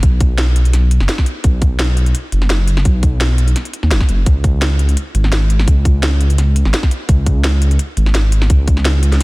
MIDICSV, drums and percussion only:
0, 0, Header, 1, 2, 480
1, 0, Start_track
1, 0, Tempo, 352941
1, 39, Time_signature, 4, 2, 24, 8
1, 12556, End_track
2, 0, Start_track
2, 0, Title_t, "Drums"
2, 39, Note_on_c, 9, 36, 123
2, 39, Note_on_c, 9, 42, 93
2, 175, Note_off_c, 9, 36, 0
2, 175, Note_off_c, 9, 42, 0
2, 279, Note_on_c, 9, 36, 113
2, 279, Note_on_c, 9, 42, 69
2, 415, Note_off_c, 9, 36, 0
2, 415, Note_off_c, 9, 42, 0
2, 519, Note_on_c, 9, 38, 127
2, 519, Note_on_c, 9, 42, 95
2, 655, Note_off_c, 9, 38, 0
2, 655, Note_off_c, 9, 42, 0
2, 761, Note_on_c, 9, 42, 66
2, 889, Note_off_c, 9, 42, 0
2, 889, Note_on_c, 9, 42, 36
2, 999, Note_off_c, 9, 42, 0
2, 999, Note_on_c, 9, 40, 38
2, 999, Note_on_c, 9, 42, 93
2, 1135, Note_off_c, 9, 40, 0
2, 1135, Note_off_c, 9, 42, 0
2, 1239, Note_on_c, 9, 42, 64
2, 1366, Note_on_c, 9, 40, 34
2, 1375, Note_off_c, 9, 42, 0
2, 1478, Note_on_c, 9, 38, 118
2, 1478, Note_on_c, 9, 42, 94
2, 1502, Note_off_c, 9, 40, 0
2, 1607, Note_on_c, 9, 40, 57
2, 1608, Note_on_c, 9, 36, 60
2, 1614, Note_off_c, 9, 38, 0
2, 1614, Note_off_c, 9, 42, 0
2, 1718, Note_on_c, 9, 42, 70
2, 1743, Note_off_c, 9, 40, 0
2, 1744, Note_off_c, 9, 36, 0
2, 1854, Note_off_c, 9, 42, 0
2, 1958, Note_on_c, 9, 42, 89
2, 1960, Note_on_c, 9, 36, 124
2, 2094, Note_off_c, 9, 42, 0
2, 2096, Note_off_c, 9, 36, 0
2, 2199, Note_on_c, 9, 42, 65
2, 2200, Note_on_c, 9, 36, 113
2, 2335, Note_off_c, 9, 42, 0
2, 2336, Note_off_c, 9, 36, 0
2, 2439, Note_on_c, 9, 38, 127
2, 2439, Note_on_c, 9, 42, 93
2, 2575, Note_off_c, 9, 38, 0
2, 2575, Note_off_c, 9, 42, 0
2, 2679, Note_on_c, 9, 42, 63
2, 2806, Note_off_c, 9, 42, 0
2, 2806, Note_on_c, 9, 42, 34
2, 2920, Note_off_c, 9, 42, 0
2, 2920, Note_on_c, 9, 42, 89
2, 3056, Note_off_c, 9, 42, 0
2, 3160, Note_on_c, 9, 42, 63
2, 3287, Note_on_c, 9, 40, 35
2, 3296, Note_off_c, 9, 42, 0
2, 3399, Note_on_c, 9, 38, 123
2, 3399, Note_on_c, 9, 42, 89
2, 3423, Note_off_c, 9, 40, 0
2, 3535, Note_off_c, 9, 38, 0
2, 3535, Note_off_c, 9, 42, 0
2, 3638, Note_on_c, 9, 42, 69
2, 3768, Note_on_c, 9, 40, 53
2, 3774, Note_off_c, 9, 42, 0
2, 3879, Note_on_c, 9, 42, 87
2, 3880, Note_on_c, 9, 36, 120
2, 3904, Note_off_c, 9, 40, 0
2, 4015, Note_off_c, 9, 42, 0
2, 4016, Note_off_c, 9, 36, 0
2, 4119, Note_on_c, 9, 42, 64
2, 4120, Note_on_c, 9, 36, 113
2, 4255, Note_off_c, 9, 42, 0
2, 4256, Note_off_c, 9, 36, 0
2, 4360, Note_on_c, 9, 38, 124
2, 4360, Note_on_c, 9, 42, 92
2, 4496, Note_off_c, 9, 38, 0
2, 4496, Note_off_c, 9, 42, 0
2, 4600, Note_on_c, 9, 42, 60
2, 4728, Note_off_c, 9, 42, 0
2, 4728, Note_on_c, 9, 42, 34
2, 4840, Note_off_c, 9, 42, 0
2, 4840, Note_on_c, 9, 40, 35
2, 4840, Note_on_c, 9, 42, 88
2, 4968, Note_off_c, 9, 42, 0
2, 4968, Note_on_c, 9, 42, 34
2, 4976, Note_off_c, 9, 40, 0
2, 5080, Note_off_c, 9, 42, 0
2, 5080, Note_on_c, 9, 42, 64
2, 5209, Note_on_c, 9, 40, 31
2, 5216, Note_off_c, 9, 42, 0
2, 5321, Note_on_c, 9, 38, 118
2, 5321, Note_on_c, 9, 42, 85
2, 5345, Note_off_c, 9, 40, 0
2, 5447, Note_on_c, 9, 40, 53
2, 5448, Note_on_c, 9, 36, 60
2, 5457, Note_off_c, 9, 38, 0
2, 5457, Note_off_c, 9, 42, 0
2, 5559, Note_on_c, 9, 42, 66
2, 5583, Note_off_c, 9, 40, 0
2, 5584, Note_off_c, 9, 36, 0
2, 5695, Note_off_c, 9, 42, 0
2, 5799, Note_on_c, 9, 36, 113
2, 5799, Note_on_c, 9, 42, 87
2, 5935, Note_off_c, 9, 36, 0
2, 5935, Note_off_c, 9, 42, 0
2, 6039, Note_on_c, 9, 36, 107
2, 6039, Note_on_c, 9, 42, 62
2, 6175, Note_off_c, 9, 36, 0
2, 6175, Note_off_c, 9, 42, 0
2, 6279, Note_on_c, 9, 38, 118
2, 6279, Note_on_c, 9, 42, 86
2, 6415, Note_off_c, 9, 38, 0
2, 6415, Note_off_c, 9, 42, 0
2, 6519, Note_on_c, 9, 42, 62
2, 6648, Note_off_c, 9, 42, 0
2, 6648, Note_on_c, 9, 42, 35
2, 6759, Note_off_c, 9, 42, 0
2, 6759, Note_on_c, 9, 42, 91
2, 6895, Note_off_c, 9, 42, 0
2, 7001, Note_on_c, 9, 42, 61
2, 7129, Note_on_c, 9, 40, 31
2, 7137, Note_off_c, 9, 42, 0
2, 7240, Note_on_c, 9, 38, 115
2, 7240, Note_on_c, 9, 42, 87
2, 7265, Note_off_c, 9, 40, 0
2, 7376, Note_off_c, 9, 38, 0
2, 7376, Note_off_c, 9, 42, 0
2, 7480, Note_on_c, 9, 42, 65
2, 7608, Note_on_c, 9, 40, 52
2, 7616, Note_off_c, 9, 42, 0
2, 7719, Note_on_c, 9, 36, 117
2, 7720, Note_on_c, 9, 42, 90
2, 7744, Note_off_c, 9, 40, 0
2, 7855, Note_off_c, 9, 36, 0
2, 7856, Note_off_c, 9, 42, 0
2, 7959, Note_on_c, 9, 36, 105
2, 7960, Note_on_c, 9, 42, 66
2, 8095, Note_off_c, 9, 36, 0
2, 8096, Note_off_c, 9, 42, 0
2, 8199, Note_on_c, 9, 38, 115
2, 8199, Note_on_c, 9, 42, 90
2, 8335, Note_off_c, 9, 38, 0
2, 8335, Note_off_c, 9, 42, 0
2, 8440, Note_on_c, 9, 42, 65
2, 8569, Note_off_c, 9, 42, 0
2, 8569, Note_on_c, 9, 42, 35
2, 8682, Note_off_c, 9, 42, 0
2, 8682, Note_on_c, 9, 40, 35
2, 8682, Note_on_c, 9, 42, 93
2, 8818, Note_off_c, 9, 40, 0
2, 8818, Note_off_c, 9, 42, 0
2, 8921, Note_on_c, 9, 42, 66
2, 9050, Note_on_c, 9, 40, 31
2, 9057, Note_off_c, 9, 42, 0
2, 9161, Note_on_c, 9, 38, 113
2, 9161, Note_on_c, 9, 42, 90
2, 9186, Note_off_c, 9, 40, 0
2, 9288, Note_on_c, 9, 36, 60
2, 9291, Note_on_c, 9, 40, 51
2, 9297, Note_off_c, 9, 38, 0
2, 9297, Note_off_c, 9, 42, 0
2, 9402, Note_on_c, 9, 42, 67
2, 9424, Note_off_c, 9, 36, 0
2, 9427, Note_off_c, 9, 40, 0
2, 9538, Note_off_c, 9, 42, 0
2, 9640, Note_on_c, 9, 36, 110
2, 9640, Note_on_c, 9, 42, 94
2, 9776, Note_off_c, 9, 36, 0
2, 9776, Note_off_c, 9, 42, 0
2, 9880, Note_on_c, 9, 36, 105
2, 9880, Note_on_c, 9, 42, 71
2, 10016, Note_off_c, 9, 36, 0
2, 10016, Note_off_c, 9, 42, 0
2, 10121, Note_on_c, 9, 38, 115
2, 10121, Note_on_c, 9, 42, 99
2, 10257, Note_off_c, 9, 38, 0
2, 10257, Note_off_c, 9, 42, 0
2, 10360, Note_on_c, 9, 42, 65
2, 10488, Note_off_c, 9, 42, 0
2, 10488, Note_on_c, 9, 42, 37
2, 10598, Note_off_c, 9, 42, 0
2, 10598, Note_on_c, 9, 42, 98
2, 10734, Note_off_c, 9, 42, 0
2, 10839, Note_on_c, 9, 42, 65
2, 10967, Note_on_c, 9, 40, 34
2, 10975, Note_off_c, 9, 42, 0
2, 11079, Note_on_c, 9, 38, 109
2, 11079, Note_on_c, 9, 42, 94
2, 11103, Note_off_c, 9, 40, 0
2, 11215, Note_off_c, 9, 38, 0
2, 11215, Note_off_c, 9, 42, 0
2, 11318, Note_on_c, 9, 42, 72
2, 11446, Note_on_c, 9, 40, 53
2, 11454, Note_off_c, 9, 42, 0
2, 11559, Note_on_c, 9, 42, 101
2, 11560, Note_on_c, 9, 36, 116
2, 11582, Note_off_c, 9, 40, 0
2, 11695, Note_off_c, 9, 42, 0
2, 11696, Note_off_c, 9, 36, 0
2, 11799, Note_on_c, 9, 42, 70
2, 11800, Note_on_c, 9, 36, 104
2, 11926, Note_on_c, 9, 40, 34
2, 11935, Note_off_c, 9, 42, 0
2, 11936, Note_off_c, 9, 36, 0
2, 12038, Note_on_c, 9, 38, 114
2, 12038, Note_on_c, 9, 42, 97
2, 12062, Note_off_c, 9, 40, 0
2, 12174, Note_off_c, 9, 38, 0
2, 12174, Note_off_c, 9, 42, 0
2, 12278, Note_on_c, 9, 42, 69
2, 12408, Note_off_c, 9, 42, 0
2, 12408, Note_on_c, 9, 38, 36
2, 12408, Note_on_c, 9, 42, 37
2, 12544, Note_off_c, 9, 38, 0
2, 12544, Note_off_c, 9, 42, 0
2, 12556, End_track
0, 0, End_of_file